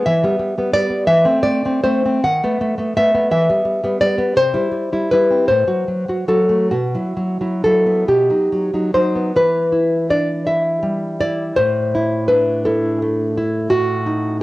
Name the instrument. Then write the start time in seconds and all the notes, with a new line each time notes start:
nylon-string guitar
0.06 E3 E5
0.24 G3 B3
0.39 G3
0.58 G3 B3
0.73 G3 B3 D5
0.90 B3
1.07 E3 E5
1.24 A3 C4
1.43 A3 D5
1.65 A3 C4
1.84 A3 C4 C5
2.06 C4
2.24 D#3 F#5
2.44 A3 B3
2.61 A3
2.78 A3 B3
2.97 A3 B3 E5
3.14 B3
3.31 E3 E5
3.49 G3 B3
3.65 G3
3.83 G3 B3
4.01 G3 B3 D5
4.18 B3
4.37 C3 C5
4.54 G3 E4
4.72 G3
4.92 G3 E4
5.11 G3 E4 B4
5.31 C4
5.48 A2 C5
5.67 F#3 F#4
5.88 F#3
6.08 F#3 F#4
6.28 F#3 F#4 A4
6.49 A3
6.71 B2 F#4
6.95 F#3 E4
7.17 F#3
7.41 F#3 E4
7.64 F#3 E4 A4
7.86 B3
8.08 B2 G4
8.30 F#3 D#4
8.52 F#3
8.74 F#3 D#4
8.94 F#3 D#4 C5
9.15 B3
9.36 E3 B4
9.72 E4
10.10 D4 D5
10.47 E4 E5
10.83 G3
11.21 E4 D5
11.56 A2 C5
11.95 E4
12.28 D4 B4
12.65 E4 A4
13.02 A3
13.38 E4
13.70 A2 F#4
14.06 D#4